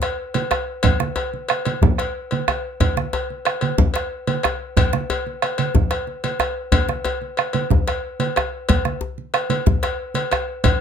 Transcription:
0.02 bombo rim medium
0.02 cowbell soft
0.02 djembe slap medium
0.34 cowbell soft
0.34 high conga medium
0.51 bombo rim medium
0.51 cowbell soft
0.51 high conga soft
0.51 djembe tone medium
0.83 bombo low medium
0.83 cowbell medium
0.83 djembe slap soft
0.83 low conga medium
0.83 djembe bass medium
1.00 bombo rim medium
1.00 djembe slap soft
1.00 high conga medium
1.16 bombo rim soft
1.16 cowbell soft
1.16 djembe tone medium
1.34 high conga soft
1.49 bombo rim medium
1.49 cowbell soft
1.49 high conga soft
1.65 cowbell soft
1.65 high conga medium
1.82 bombo low medium
1.82 djembe tone medium
1.82 djembe bass medium
1.82 low conga medium
1.98 bombo rim medium
1.98 cowbell soft
1.98 djembe slap soft
2.31 cowbell soft
2.31 high conga medium
2.48 bombo rim loud
2.48 cowbell soft
2.48 djembe tone medium
2.48 high conga soft
2.80 bombo low medium
2.80 cowbell medium
2.80 djembe slap soft
2.80 low conga medium
2.80 djembe bass medium
2.97 bombo rim medium
2.97 djembe slap soft
2.97 high conga soft
3.13 bombo rim soft
3.13 cowbell soft
3.13 djembe tone medium
3.30 high conga soft
3.45 bombo rim medium
3.45 cowbell soft
3.45 high conga soft
3.61 cowbell soft
3.61 high conga medium
3.78 bombo low medium
3.78 djembe tone medium
3.78 djembe bass medium
3.78 low conga medium
3.94 bombo rim medium
3.94 cowbell soft
3.94 djembe slap medium
4.27 cowbell soft
4.27 high conga medium
4.43 bombo rim medium
4.43 cowbell soft
4.43 high conga soft
4.43 djembe tone medium
4.77 bombo low medium
4.77 cowbell medium
4.77 djembe slap soft
4.77 low conga medium
4.77 djembe bass medium
4.93 bombo rim medium
4.93 djembe slap soft
4.93 high conga medium
5.10 cowbell medium
5.10 djembe tone medium
5.10 high conga soft
5.27 high conga soft
5.42 bombo rim medium
5.42 cowbell soft
5.42 high conga soft
5.58 cowbell soft
5.58 high conga medium
5.75 bombo rim soft
5.75 bombo low medium
5.75 djembe tone medium
5.75 djembe bass medium
5.75 low conga medium
5.91 bombo rim medium
5.91 cowbell soft
5.91 djembe slap medium
6.07 djembe slap soft
6.07 high conga soft
6.24 cowbell soft
6.24 djembe slap soft
6.24 high conga medium
6.40 bombo rim medium
6.40 cowbell soft
6.40 djembe tone medium
6.40 high conga soft
6.72 bombo low medium
6.72 cowbell medium
6.72 djembe slap soft
6.72 djembe bass medium
6.72 low conga medium
6.88 bombo rim medium
6.88 djembe slap medium
6.88 high conga soft
7.04 bombo rim soft
7.04 cowbell soft
7.04 djembe tone medium
7.21 high conga soft
7.37 bombo rim medium
7.37 cowbell soft
7.37 high conga soft
7.53 cowbell soft
7.53 high conga medium
7.70 bombo low medium
7.70 djembe tone medium
7.70 low conga medium
7.70 djembe bass medium
7.87 bombo rim medium
7.87 cowbell soft
7.87 djembe slap medium
8.20 cowbell soft
8.20 high conga medium
8.36 bombo rim medium
8.36 cowbell soft
8.36 high conga soft
8.36 djembe tone medium
8.69 bombo low medium
8.69 cowbell medium
8.69 djembe slap soft
8.69 low conga medium
8.69 djembe bass medium
8.85 bombo rim medium
8.85 djembe slap soft
8.85 high conga soft
9.01 djembe tone medium
9.18 high conga soft
9.34 bombo rim medium
9.34 cowbell medium
9.34 high conga soft
9.50 cowbell soft
9.50 high conga medium
9.66 bombo low medium
9.66 djembe tone medium
9.66 low conga medium
9.66 djembe bass medium
9.83 bombo rim medium
9.83 cowbell medium
9.83 djembe slap medium
10.14 cowbell soft
10.14 high conga medium
10.31 bombo rim medium
10.31 cowbell soft
10.31 high conga soft
10.31 djembe tone medium
10.64 bombo low medium
10.64 cowbell medium
10.64 djembe slap soft
10.64 low conga medium
10.64 djembe bass medium

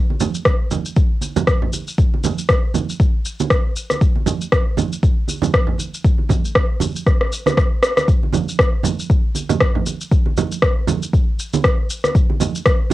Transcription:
0.10 high conga medium
0.20 high conga medium
0.20 low conga loud
0.20 shaker medium
0.35 shaker medium
0.45 kick loud
0.45 cross-stick loud
0.45 shaker soft
0.71 high conga medium
0.71 low conga medium
0.71 shaker medium
0.85 shaker soft
0.96 kick loud
0.96 shaker soft
1.21 high conga medium
1.21 shaker medium
1.36 high conga loud
1.36 low conga loud
1.36 shaker medium
1.47 kick loud
1.47 cross-stick loud
1.47 shaker soft
1.62 low conga medium
1.73 high conga medium
1.73 shaker medium
1.87 shaker soft
1.98 kick loud
1.98 shaker soft
2.14 high conga medium
2.23 high conga medium
2.23 low conga medium
2.23 shaker medium
2.38 shaker medium
2.49 kick loud
2.49 cross-stick loud
2.49 shaker soft
2.74 high conga loud
2.74 low conga medium
2.74 shaker medium
2.89 shaker soft
3.00 kick loud
3.00 shaker soft
3.25 shaker medium
3.40 high conga loud
3.40 shaker soft
3.50 kick loud
3.50 cross-stick loud
3.50 shaker soft
3.76 shaker medium
3.90 cross-stick medium
3.90 high conga medium
3.90 shaker soft
4.01 kick loud
4.01 shaker soft
4.16 high conga medium
4.26 high conga medium
4.26 low conga loud
4.26 shaker medium
4.41 shaker soft
4.52 kick loud
4.52 cross-stick loud
4.52 shaker soft
4.77 high conga loud
4.77 low conga loud
4.77 shaker medium
4.93 shaker soft
5.03 kick loud
5.03 shaker soft
5.28 high conga medium
5.28 shaker medium
5.42 high conga loud
5.42 low conga loud
5.42 shaker soft
5.54 kick loud
5.54 cross-stick loud
5.54 shaker soft
5.67 low conga medium
5.78 high conga medium
5.78 shaker medium
5.94 shaker soft
6.05 kick loud
6.05 shaker soft
6.18 high conga medium
6.29 kick medium
6.29 high conga medium
6.29 low conga loud
6.29 shaker medium
6.45 shaker medium
6.55 kick loud
6.55 cross-stick loud
6.55 shaker soft
6.80 high conga medium
6.80 low conga loud
6.80 shaker medium
6.96 shaker soft
7.06 kick loud
7.06 cross-stick medium
7.06 shaker soft
7.21 cross-stick medium
7.32 shaker medium
7.46 cross-stick medium
7.46 high conga loud
7.46 shaker soft
7.57 kick loud
7.57 cross-stick medium
7.57 shaker soft
7.83 cross-stick loud
7.83 shaker medium
7.97 cross-stick medium
7.97 high conga medium
7.97 shaker medium
8.08 kick loud
8.08 shaker soft
8.23 high conga medium
8.33 high conga medium
8.33 low conga loud
8.33 shaker medium
8.49 shaker medium
8.59 kick loud
8.59 cross-stick loud
8.59 shaker soft
8.83 high conga medium
8.83 low conga loud
8.83 shaker medium
8.99 shaker soft
9.10 kick loud
9.10 shaker soft
9.35 high conga medium
9.35 shaker medium
9.49 high conga loud
9.49 low conga loud
9.49 shaker medium
9.61 kick loud
9.61 cross-stick loud
9.61 shaker soft
9.75 low conga medium
9.86 high conga medium
9.86 shaker medium
10.01 shaker medium
10.12 kick loud
10.12 shaker soft
10.26 high conga medium
10.37 high conga medium
10.37 low conga loud
10.37 shaker medium
10.52 shaker medium
10.62 kick loud
10.62 cross-stick loud
10.62 shaker soft
10.88 high conga loud
10.88 low conga loud
10.88 shaker loud
11.03 shaker medium
11.13 kick loud
11.13 shaker soft
11.39 shaker medium
11.53 high conga loud
11.53 shaker medium
11.64 kick loud
11.64 cross-stick loud
11.64 shaker soft
11.90 shaker loud
12.04 cross-stick medium
12.04 high conga medium
12.04 shaker medium
12.15 kick loud
12.15 shaker soft
12.30 high conga medium
12.40 high conga medium
12.40 low conga loud
12.40 shaker medium
12.55 shaker medium
12.66 kick loud
12.66 cross-stick loud
12.66 shaker soft
12.90 high conga loud

